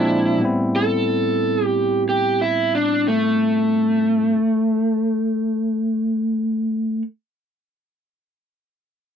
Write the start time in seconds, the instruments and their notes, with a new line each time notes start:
Already playing: tine electric piano A#2 F3 G#3 C4 D4, overdriven electric guitar E4
0.38 tine electric piano A2 G3 B3
0.43 tine electric piano C4 E4
0.76 overdriven electric guitar A4
1.65 overdriven electric guitar G4
2.09 overdriven electric guitar G4
2.41 overdriven electric guitar E4
2.75 overdriven electric guitar D4
3.08 overdriven electric guitar A3